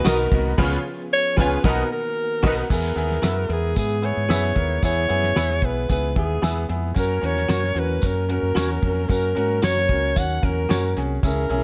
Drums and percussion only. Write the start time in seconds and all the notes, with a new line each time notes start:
0.05 snare, ride, tambourine
0.32 kick, snare, ride
0.58 kick, snare, crash
1.38 kick, snare
1.64 kick, snare
2.44 kick, snare, crash
2.70 kick, crash, tambourine
2.98 closed hi-hat
3.11 snare
3.23 snare, closed hi-hat, tambourine
3.50 closed hi-hat
3.76 kick, closed hi-hat, tambourine
4.03 closed hi-hat
4.30 snare, closed hi-hat, tambourine
4.56 kick, closed hi-hat
4.83 kick, closed hi-hat, tambourine
5.09 closed hi-hat
5.23 snare
5.36 snare, closed hi-hat, tambourine
5.50 snare
5.62 kick, closed hi-hat
5.89 kick, closed hi-hat, tambourine
6.16 kick, closed hi-hat
6.44 snare, closed hi-hat, tambourine
6.69 closed hi-hat
6.96 kick, closed hi-hat, tambourine
7.24 closed hi-hat
7.37 snare
7.49 snare, closed hi-hat, tambourine
7.64 snare
7.76 closed hi-hat
8.02 kick, closed hi-hat, tambourine
8.30 closed hi-hat
8.57 snare, closed hi-hat, tambourine
8.83 kick, open hi-hat
9.10 kick, closed hi-hat, tambourine
9.37 closed hi-hat
9.62 snare, closed hi-hat, tambourine
9.77 snare
9.89 kick, closed hi-hat
10.16 kick, closed hi-hat, tambourine
10.43 kick, closed hi-hat
10.71 snare, closed hi-hat, tambourine
10.97 snare, closed hi-hat
11.23 kick, closed hi-hat, tambourine
11.50 closed hi-hat